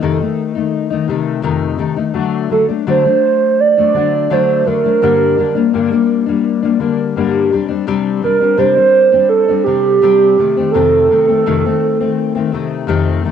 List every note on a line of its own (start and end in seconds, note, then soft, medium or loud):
0.00 0.19 F2 medium
0.00 0.20 C3 medium
0.00 0.20 D#3 medium
0.00 0.20 A3 medium
0.00 0.19 D#4 medium
0.00 0.32 A4 medium
0.20 0.57 D#3 soft
0.20 0.56 A3 soft
0.20 0.54 D#4 medium
0.55 0.92 D#3 soft
0.55 0.91 A3 soft
0.55 0.89 D#4 medium
0.90 1.08 D#3 soft
0.90 1.08 A3 medium
0.90 1.08 D#4 medium
1.08 1.42 C3 medium
1.08 1.42 D#3 medium
1.08 1.43 A3 medium
1.08 1.43 D#4 medium
1.42 1.79 F2 medium
1.42 1.76 C3 medium
1.42 1.77 D#3 medium
1.42 1.78 A3 medium
1.42 1.79 D#4 medium
1.78 1.97 C3 medium
1.78 1.97 D#3 medium
1.78 1.96 A3 medium
1.78 1.95 D#4 medium
1.96 2.14 D#3 soft
1.96 2.14 A3 soft
1.96 2.15 D#4 medium
2.13 2.48 D3 medium
2.13 2.49 F#3 medium
2.13 2.50 A3 medium
2.13 2.51 D4 medium
2.50 2.68 D3 soft
2.50 2.69 F#3 soft
2.50 2.68 A3 soft
2.50 2.67 D4 soft
2.50 2.66 A4 medium
2.69 2.86 F#3 soft
2.69 2.86 A3 soft
2.69 2.87 D4 soft
2.87 3.05 D3 medium
2.87 3.05 F#3 medium
2.87 3.04 A3 medium
2.87 3.04 D4 medium
2.87 3.61 C5 loud
3.05 3.78 F#3 soft
3.05 3.77 A3 soft
3.05 3.77 D4 soft
3.60 4.34 D5 loud
3.77 3.94 F#3 soft
3.77 3.94 A3 medium
3.77 3.95 D4 medium
3.94 4.29 D3 soft
3.94 4.29 F#3 medium
3.94 4.30 A3 medium
3.94 4.31 D4 medium
4.30 4.64 D3 medium
4.30 4.65 F#3 medium
4.30 4.66 A3 medium
4.30 4.67 D4 medium
4.30 4.68 C5 medium
4.65 4.83 D3 soft
4.65 4.84 F#3 medium
4.65 4.84 A3 medium
4.65 4.83 D4 medium
4.65 6.09 A#4 loud
4.84 5.03 F#3 soft
4.84 5.02 A3 soft
4.84 5.02 D4 soft
5.02 5.38 G2 medium
5.02 5.36 D3 medium
5.02 5.37 G3 medium
5.02 5.38 A#3 medium
5.02 5.38 D4 medium
5.38 5.55 D3 medium
5.38 5.56 G3 soft
5.38 5.55 A#3 medium
5.38 5.53 D4 medium
5.55 5.73 G3 soft
5.55 5.73 A#3 medium
5.55 5.73 D4 soft
5.73 5.91 G2 medium
5.73 5.91 D3 medium
5.73 5.91 G3 medium
5.73 5.91 A#3 medium
5.73 5.89 D4 loud
5.91 6.28 G3 soft
5.91 6.27 A#3 medium
5.91 6.25 D4 medium
6.26 6.64 G3 soft
6.26 6.63 A#3 soft
6.26 6.61 D4 soft
6.62 6.79 G3 medium
6.62 6.79 A#3 medium
6.62 6.80 D4 medium
6.79 7.16 D3 medium
6.79 7.16 G3 medium
6.79 7.16 A#3 medium
6.79 7.17 D4 medium
7.16 7.52 G2 medium
7.16 7.51 D3 medium
7.16 7.52 G3 medium
7.16 7.53 A#3 medium
7.16 7.53 D4 medium
7.51 7.70 C3 medium
7.51 7.70 G3 medium
7.51 7.69 C4 medium
7.51 7.67 D4 medium
7.69 7.87 G3 soft
7.69 7.87 C4 soft
7.69 7.87 D4 medium
7.87 8.21 C3 medium
7.87 8.23 G3 medium
7.87 8.23 C4 loud
7.87 8.24 D4 medium
8.23 8.41 C3 soft
8.23 8.41 G3 medium
8.23 8.40 C4 medium
8.23 8.39 D4 soft
8.23 8.60 A#4 medium
8.40 8.57 G3 soft
8.40 8.58 C4 soft
8.40 8.58 D4 soft
8.57 8.76 C3 medium
8.57 8.77 G3 medium
8.57 8.76 C4 medium
8.57 8.74 D4 medium
8.57 9.29 C5 loud
8.76 9.13 G3 soft
8.76 9.12 C4 soft
8.76 9.11 D4 soft
9.12 9.49 G3 soft
9.12 9.48 C4 soft
9.12 9.47 D4 medium
9.29 9.63 A4 loud
9.48 9.66 G3 soft
9.48 9.67 C4 soft
9.48 9.66 D4 medium
9.64 10.01 C3 medium
9.64 10.02 G3 medium
9.64 10.69 G4 loud
9.68 10.02 C4 medium
9.68 10.03 D4 medium
10.02 10.37 C3 medium
10.02 10.38 G3 medium
10.02 10.39 C4 medium
10.02 10.39 D4 medium
10.38 10.56 C3 medium
10.38 10.56 D#3 medium
10.38 10.57 A3 medium
10.38 10.56 C4 medium
10.57 10.74 D#3 soft
10.57 10.74 A3 soft
10.57 10.74 C4 medium
10.71 11.10 F2 medium
10.71 11.09 C3 medium
10.71 11.10 D#3 medium
10.71 12.83 A4 loud
10.75 11.10 A3 medium
10.75 11.10 C4 medium
11.10 11.28 C3 soft
11.10 11.28 D#3 soft
11.10 11.28 A3 soft
11.10 11.27 C4 medium
11.28 11.46 D#3 soft
11.28 11.46 A3 soft
11.28 11.46 C4 soft
11.46 11.63 F2 medium
11.46 11.64 C3 medium
11.46 11.64 D#3 medium
11.46 11.64 A3 medium
11.46 11.64 C4 medium
11.65 12.01 D#3 soft
11.65 12.01 A3 medium
11.65 11.99 C4 medium
12.00 12.37 D#3 soft
12.00 12.35 A3 soft
12.00 12.34 C4 medium
12.35 12.52 D#3 soft
12.35 12.53 A3 medium
12.35 12.53 C4 medium
12.52 12.87 C3 medium
12.52 12.87 D#3 medium
12.52 12.88 A3 medium
12.52 12.88 C4 medium
12.87 13.23 F2 medium
12.87 13.22 C3 medium
12.87 13.24 D#3 medium
12.87 13.24 A3 medium
12.87 13.25 C4 loud
13.24 13.31 C3 medium
13.24 13.31 D#3 medium
13.24 13.31 A3 medium
13.24 13.31 C4 medium